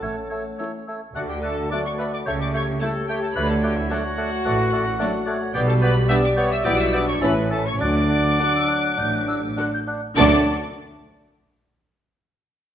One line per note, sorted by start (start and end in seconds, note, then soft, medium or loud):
0.00 0.47 A1 medium
0.00 0.47 A2 medium
0.00 0.85 A3 soft
0.00 0.16 A3 soft
0.00 0.87 C#4 medium
0.00 0.59 A4 medium
0.00 0.15 C#5 soft
0.00 0.87 F#5 medium
0.00 0.59 A5 medium
0.00 0.08 E6 soft
0.30 0.44 A3 soft
0.30 0.42 C#5 soft
0.30 0.37 E6 soft
0.58 1.01 E3 soft
0.58 1.01 A3 medium
0.58 0.72 A3 soft
0.58 1.01 C#4 soft
0.58 1.01 A4 soft
0.58 0.71 C#5 soft
0.58 0.65 E6 soft
0.87 1.01 A3 soft
0.87 1.00 C#5 soft
0.87 0.93 E6 soft
1.14 1.62 D2 medium
1.14 1.62 D3 medium
1.14 1.28 A3 medium
1.14 1.68 A3 medium
1.14 1.21 F#4 medium
1.14 1.68 F#4 medium
1.14 2.22 D5 medium
1.14 1.28 D5 medium
1.14 1.20 F#5 medium
1.14 1.21 F#6 medium
1.28 1.35 G4 medium
1.28 1.44 G5 medium
1.42 1.57 A3 medium
1.42 1.70 A4 medium
1.42 1.56 D5 medium
1.42 1.71 A5 medium
1.42 1.49 F#6 medium
1.70 1.80 F#3 medium
1.70 2.25 A3 medium
1.70 1.79 A3 medium
1.70 1.85 A3 medium
1.70 1.80 D4 medium
1.70 2.25 F#4 medium
1.70 1.80 A4 medium
1.70 1.85 D5 medium
1.70 1.84 D5 medium
1.70 1.78 D6 medium
1.70 1.78 F#6 medium
1.84 1.99 C#5 medium
1.84 1.91 C#6 medium
1.98 2.12 A3 medium
1.98 2.04 B4 medium
1.98 2.12 D5 medium
1.98 2.05 B5 medium
1.98 2.05 F#6 medium
2.12 2.19 D5 medium
2.12 2.19 D6 medium
2.26 2.72 C#2 medium
2.26 2.73 C#3 medium
2.26 2.80 A3 medium
2.26 2.40 A3 medium
2.26 2.80 G4 medium
2.26 2.32 C#5 medium
2.26 2.39 C#5 medium
2.26 2.80 E5 medium
2.26 2.32 C#6 medium
2.26 2.32 G6 medium
2.39 2.53 D5 medium
2.39 2.46 D6 medium
2.53 2.67 A3 medium
2.53 2.66 C#5 medium
2.53 2.68 C#5 medium
2.53 2.62 C#6 medium
2.53 2.60 G6 medium
2.80 2.89 G3 medium
2.80 2.88 A3 medium
2.80 3.35 A3 medium
2.80 2.94 A3 medium
2.80 2.90 E4 medium
2.80 3.35 G4 medium
2.80 3.08 A4 medium
2.80 2.90 A4 medium
2.80 4.47 C#5 medium
2.80 2.93 C#5 medium
2.80 2.88 A5 loud
2.80 2.88 G6 medium
3.08 3.22 A3 medium
3.08 3.22 G4 medium
3.08 3.21 C#5 medium
3.08 3.22 G5 medium
3.08 3.15 G6 medium
3.21 3.28 A4 medium
3.21 3.35 A5 medium
3.34 3.81 D2 medium
3.34 3.82 D3 medium
3.34 3.89 A3 medium
3.34 3.49 A3 medium
3.34 3.89 F#4 medium
3.34 3.49 B4 medium
3.34 3.48 D5 medium
3.34 3.48 B5 loud
3.34 3.42 F#6 medium
3.49 3.55 A4 medium
3.49 3.63 A5 medium
3.62 3.76 A3 medium
3.62 3.76 G4 medium
3.62 3.75 D5 medium
3.62 3.77 G5 medium
3.62 3.70 F#6 medium
3.77 3.91 E4 medium
3.77 3.91 E5 medium
3.90 3.98 F#3 medium
3.90 3.98 A3 medium
3.90 5.51 A3 medium
3.90 4.03 A3 medium
3.90 3.99 D4 medium
3.90 5.51 F#4 loud
3.90 5.51 F#4 medium
3.90 3.99 A4 medium
3.90 4.02 D5 medium
3.90 5.54 F#5 loud
3.90 3.97 F#6 medium
4.18 4.30 A3 medium
4.18 4.30 D5 medium
4.18 4.24 F#6 medium
4.45 4.91 A1 medium
4.45 4.91 A2 medium
4.45 4.58 A3 medium
4.45 4.71 B4 medium
4.45 4.58 D5 medium
4.45 4.51 F#6 medium
4.72 4.85 A3 medium
4.72 4.84 A4 medium
4.72 4.85 D5 medium
4.72 4.78 F#6 medium
4.99 5.09 F#3 medium
4.99 5.12 A3 medium
4.99 5.09 A3 medium
4.99 5.08 D4 medium
4.99 5.08 A4 medium
4.99 5.12 D5 medium
4.99 5.05 F#6 medium
5.26 5.40 A3 medium
5.26 5.53 C#5 medium
5.26 5.39 D5 medium
5.26 5.33 F#6 medium
5.54 6.00 B1 loud
5.54 6.00 B2 medium
5.54 6.63 G3 medium
5.54 5.67 B3 medium
5.54 5.60 G4 loud
5.54 6.63 G4 medium
5.54 7.18 D5 loud
5.54 5.67 D5 medium
5.54 5.60 G5 loud
5.54 5.60 G6 medium
5.67 5.74 A4 medium
5.67 5.75 A5 medium
5.81 5.95 B3 medium
5.81 5.94 B4 loud
5.81 5.95 D5 medium
5.81 6.09 B5 loud
5.81 5.88 G6 medium
6.09 6.18 G3 medium
6.09 6.22 B3 medium
6.09 6.18 B3 medium
6.09 6.18 D4 medium
6.09 6.18 G4 medium
6.09 6.22 D5 medium
6.09 6.15 E5 loud
6.09 6.15 E6 loud
6.09 6.15 G6 medium
6.23 6.29 D5 medium
6.23 6.30 D6 medium
6.36 6.50 B3 medium
6.36 6.50 C#5 loud
6.36 6.49 D5 medium
6.36 6.43 C#6 loud
6.36 6.43 G6 medium
6.51 6.65 E5 medium
6.51 6.58 E6 loud
6.65 7.12 B1 medium
6.65 7.12 B2 medium
6.65 6.73 E3 medium
6.65 7.21 G3 medium
6.65 6.73 B3 medium
6.65 6.78 B3 medium
6.65 6.93 E4 medium
6.65 6.74 E4 medium
6.65 6.74 G4 medium
6.65 6.79 D5 loud
6.65 6.78 E5 medium
6.65 6.79 D6 loud
6.65 6.71 G6 medium
6.79 6.85 E5 medium
6.79 6.94 E6 loud
6.92 7.07 B3 medium
6.92 7.22 D4 medium
6.92 7.00 D5 loud
6.92 7.06 E5 medium
6.92 7.08 D6 loud
6.92 6.99 G6 medium
7.08 7.14 C#5 medium
7.08 7.22 C#6 loud
7.20 7.70 A1 medium
7.20 7.70 A2 medium
7.20 7.80 E3 medium
7.20 7.30 E3 medium
7.20 7.35 C#4 medium
7.20 7.30 C#4 medium
7.20 7.81 C#4 medium
7.20 7.30 E4 medium
7.20 7.30 A4 medium
7.20 7.51 B4 medium
7.20 7.58 E5 loud
7.20 7.35 E5 medium
7.20 7.30 B5 loud
7.20 7.28 A6 medium
7.50 7.64 C#4 medium
7.50 7.65 A4 medium
7.50 7.63 E5 medium
7.50 7.65 A5 loud
7.50 7.58 A6 medium
7.66 7.80 C#5 medium
7.66 7.72 C#6 loud
7.79 8.29 D2 medium
7.79 9.87 F#3 medium
7.79 9.83 D4 medium
7.79 7.94 D4 medium
7.79 9.58 D5 loud
7.79 9.83 F#5 medium
7.79 7.94 F#5 medium
7.79 9.54 D6 loud
7.79 7.88 A6 medium
8.09 8.22 D4 medium
8.09 8.23 F#5 medium
8.09 8.17 A6 medium
8.39 8.48 D3 medium
8.39 8.47 D4 medium
8.39 8.53 D4 medium
8.39 8.48 F#4 medium
8.39 8.48 A4 medium
8.39 8.53 F#5 medium
8.39 8.46 D6 medium
8.55 8.69 E6 medium
8.68 8.82 D4 medium
8.68 8.82 F#5 medium
8.68 9.00 F#6 medium
8.97 9.48 A1 medium
8.97 9.48 A2 medium
8.97 9.11 D4 medium
8.97 9.11 F#5 medium
8.97 9.16 G6 loud
9.15 9.27 F#6 medium
9.28 9.41 D4 medium
9.28 9.41 F#5 medium
9.28 9.35 E6 medium
9.57 9.65 D3 medium
9.57 9.71 D4 medium
9.57 9.66 D4 medium
9.57 9.66 F#4 medium
9.57 9.66 A4 medium
9.57 9.70 F#5 medium
9.57 9.65 F#6 medium
9.74 9.80 G6 medium
9.87 10.01 D4 medium
9.87 10.01 F#5 medium
9.87 9.94 F#6 medium
10.16 10.50 D2 loud
10.16 10.50 D3 medium
10.16 10.41 F#3 medium
10.16 10.42 A3 medium
10.16 10.42 D4 medium
10.16 10.50 D4 medium
10.16 10.42 F#4 medium
10.16 10.50 F#4 medium
10.16 10.50 A4 medium
10.16 10.42 D5 medium
10.16 10.42 D5 loud
10.16 10.50 A5 medium
10.16 10.50 D6 loud